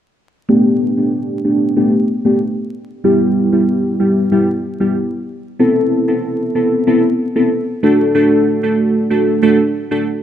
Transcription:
0.49 A3 B3 D4 G4
0.97 A3 B3 D4 G4
1.44 A3 B3 D4 G4
1.76 A3 B3 D4 G4
2.25 A3 B3 D4 G4
3.04 G3 B3 E4 G4
3.52 G3 B3 E4 G4
4.00 G3 B3 E4 G4
4.32 G3 B3 E4 G4
4.80 G3 B3 E4 G4
5.59 B3 C4 E4 A4
6.08 B3 C4 E4 A4
6.55 B3 C4 E4 A4
6.87 B3 C4 E4 A4
7.36 B3 C4 E4 A4
7.83 A3 D4 F#4 A4
8.15 A3 D4 F#4 A4
8.63 A3 D4 F#4 A4
9.10 A3 D4 F#4 A4
9.42 A3 D4 F#4 A4
9.91 A3 D4 F#4 A4

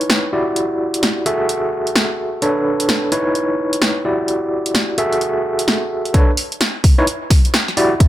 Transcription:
Already playing: D#4 E4 B4 C#5
0.01 closed hi-hat
0.10 snare
0.33 E4 F#4 G4 D5
0.56 closed hi-hat
0.94 closed hi-hat
1.03 snare, closed hi-hat
1.26 F#4 G#4 A4 E5, closed hi-hat
1.49 closed hi-hat
1.87 closed hi-hat
1.96 snare
2.42 D4 A4 B4 C#5, closed hi-hat
2.80 closed hi-hat
2.89 snare, closed hi-hat
3.12 D#4 E4 B4 C#5, closed hi-hat
3.35 closed hi-hat
3.73 closed hi-hat
3.82 snare
4.05 E4 F#4 G4 D5
4.28 closed hi-hat
4.66 closed hi-hat
4.75 snare, closed hi-hat
4.98 F#4 G#4 A4 E5, closed hi-hat
5.13 closed hi-hat
5.21 closed hi-hat
5.59 closed hi-hat
5.68 snare
6.05 closed hi-hat
6.14 D4 A4 B4 C#5, kick, closed hi-hat
6.37 open hi-hat
6.52 closed hi-hat
6.61 snare, closed hi-hat
6.84 kick, open hi-hat
6.98 D#4 E4 B4 C#5
7.07 closed hi-hat
7.30 kick, snare, open hi-hat
7.45 closed hi-hat
7.54 snare
7.68 snare
7.77 E4 F#4 G4 D5, open hi-hat
8.00 kick, closed hi-hat

